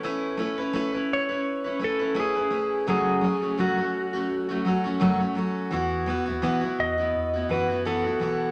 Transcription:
X:1
M:4/4
L:1/16
Q:"Swing 16ths" 1/4=84
K:E
V:1 name="Electric slide guitar"
z6 c4 A2 G4 | G4 F8- F2 z2 | z6 d4 B2 A4 |]
V:2 name="Steel-string acoustic guitar"
[A,CEB]2 [A,CEB] [CEB] [A,CEB] [CEB]2 [CEB]2 [CEB] [A,CEB] [CEB] [A,CEB] [CEB] [A,CEB]2 | [F,,C,F,A,CF]2 [F,A,CF] [F,A,CF] [F,,C,F,A,CF] [F,A,CF]2 [F,A,CF]2 [F,A,CF] [F,A,CF] [F,A,CF] [F,,C,F,A,CF] [F,A,CF] [F,A,CF]2 | [E,B,EF]2 [E,B,EF] [B,EF] [E,B,EF] [B,EF]2 [B,EF]2 [B,EF] [E,B,EF] [B,EF] [E,B,EF] [B,EF] [E,B,EF]2 |]
V:3 name="Tine electric piano" clef=bass
z16 | z16 | E,,3 D,, B,,,2 E,,2 E,,2 F,,4 B,,,2 |]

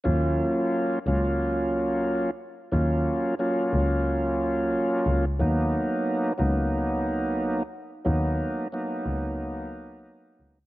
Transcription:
X:1
M:4/4
L:1/16
Q:"Swing 16ths" 1/4=90
K:Ebm
V:1 name="Tonewheel organ"
[G,B,DF]6 [G,B,DF]8 z2 | [G,B,DF]4 [G,B,DF]8- [G,B,DF]3 z | [G,B,CE]6 [G,B,CE]8 z2 | [G,B,CE]4 [G,B,CE]8- [G,B,CE]3 z |]
V:2 name="Double bass" clef=bass
E,,2 z4 D,,6- D,, z3 | E,,2 z4 D,,6 z2 D,,2 | E,,2 z4 D,,6- D,, z3 | E,,2 z4 D,,6 z2 D,,2 |]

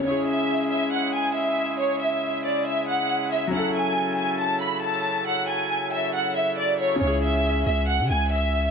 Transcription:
X:1
M:4/4
L:1/16
Q:1/4=138
K:C#m
V:1 name="Violin section"
c2 e4 e2 f2 g2 e4 | c2 e4 =d2 e2 f4 e2 | f2 g4 g2 a2 b2 a4 | f2 g4 e2 f2 e2 =d2 c2 |
c2 e4 e2 f2 g2 e4 |]
V:2 name="Grand piano"
[C,CEG]16- | [C,CEG]16 | [F,CEA]16- | [F,CEA]16 |
[C,CEG]16 |]
V:3 name="Accordion"
[G,G]16- | [G,G]16 | [F,A]16- | [F,A]16 |
z16 |]
V:4 name="Accordion" clef=bass
[C,E]16- | [C,E]16- | [C,E]16- | [C,E]16 |
z16 |]
V:5 name="808-style bass" clef=bass
z16 | z16 | z16 | z16 |
C,,6 C,,3 C, C,,6 |]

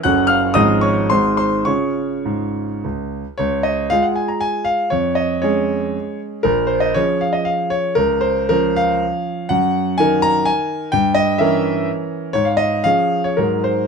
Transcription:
X:1
M:3/4
L:1/16
Q:1/4=118
K:Db
V:1 name="Grand piano"
[gg']2 [ff']2 [ee']2 [dd']2 [cc']2 [cc']2 | [dd']8 z4 | d2 e2 f g a b a2 f2 | d2 e2 d6 z2 |
B2 c e d2 f e f2 d2 | B2 c2 B2 f6 | g4 a2 b2 a4 | =g2 e2 =e2 z6 |
d f e2 f3 d B2 c2 |]
V:2 name="Grand piano" clef=bass
[G,,,G,,G,D=A]4 [_A,,,A,,F,D_A]4 [A,,,A,,A,EA]4 | [D,FA]4 A,,4 D,,4 | D,,4 [A,FA]8 | F,,4 [A,DA]8 |
B,,,4 [F,DA]8 | D,,4 [F,D]8 | G,,4 [E,EB]8 | =G,,4 [=E,DB]8 |
A,,4 [F,DA]4 [A,,G,EA]4 |]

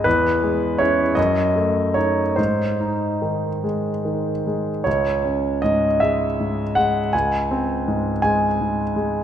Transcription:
X:1
M:12/8
L:1/8
Q:3/8=53
K:C#m
V:1 name="Grand piano"
B2 c d2 c ^B3 z3 | c2 d e2 f g3 g3 |]
V:2 name="Grand piano" clef=bass
E,, G, [CE] F,, A, D G,, D D, G, D, G, | C,, C G,, G, G,, G, C,, ^B, G,, G, G,, G, |]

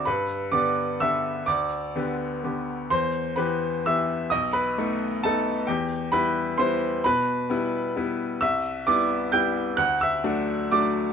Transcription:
X:1
M:3/4
L:1/8
Q:1/4=130
K:G
V:1 name="Grand piano"
[Bb]2 [dd']2 [ee']2 | [dd']6 | [cc']2 [Bb]2 [ee']2 | [^d^d'] [Bb]3 [Aa]2 |
[Gg]2 [Bb]2 [cc']2 | [Bb]6 | [ee']2 [dd']2 [gg']2 | [ff'] [ee']3 [dd']2 |]
V:2 name="Grand piano"
G,,2 [D,B,G]2 [D,B,G]2 | D,,2 [D,B,G]2 [D,B,G]2 | E,,2 [E,B,G]2 [E,B,G]2 | B,,,2 [A,B,^D]2 [A,B,D]2 |
E,,2 [G,B,E]2 [G,B,E]2 | B,,2 [G,B,E]2 [G,B,E]2 | C,,2 [G,B,E]2 [G,B,E]2 | D,,2 [F,A,D]2 [F,A,D]2 |]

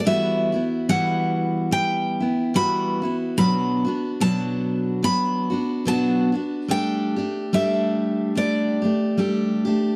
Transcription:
X:1
M:4/4
L:1/16
Q:"Swing" 1/4=72
K:Edor
V:1 name="Steel-string acoustic guitar"
e4 f4 g4 b3 z | b4 a4 b4 a4 | g4 e4 d6 z2 |]
V:2 name="Steel-string acoustic guitar"
[E,G,B,EF]2 [B,EF]2 [E,G,B,EF]4 [G,B,E]2 [B,E]2 [E,G,B,EF]2 [B,EF]2 | [B,,F,B,DF]2 [B,DF]2 [B,,F,B,DF]4 [F,B,DF]2 [B,DF]2 [B,,F,B,DF]2 [B,DF]2 | [G,A,DG]2 [A,DG]2 [G,A,DG]4 [G,A,DG]2 [A,DG]2 [G,A,DG]2 [A,DG]2 |]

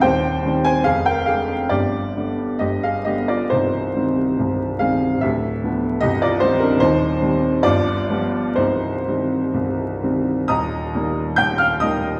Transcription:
X:1
M:2/4
L:1/16
Q:1/4=68
K:Cm
V:1 name="Upright piano"
[cg]3 [ca] [Af] [Bg] [Af]2 | [Gd]4 [Ge] [Af] [Ge] [Fd] | [Ec]6 [Af]2 | [G=e]4 [G_e] [Fd] [Ec] [DB] |
[Ec]4 [Fd]4 | [Ec]6 z2 | [K:Eb] [ebe']4 [gg'] [ff'] [ee']2 |]
V:2 name="Upright piano" clef=bass
[E,,,E,,]2 [E,G,C]2 [F,,,F,,]2 [D,A,D]2 | [G,,,G,,]2 [D,G,=B,]2 [G,,,G,,]2 [D,G,B,]2 | [C,,,C,,]2 [E,G,C]2 [C,,,C,,]2 [E,G,C]2 | [D,,,D,,]2 [D,F,=B,]2 [C,,,C,,]2 [E,G,C]2 |
[E,,,E,,]2 [E,G,C]2 [G,,,G,,]2 [F,G,=B,]2 | [C,,,C,,]2 [E,G,C]2 [C,,,C,,]2 [E,G,C]2 | [K:Eb] [E,,,E,,]2 [E,G,B,]2 [E,,,E,,]2 [E,G,B,]2 |]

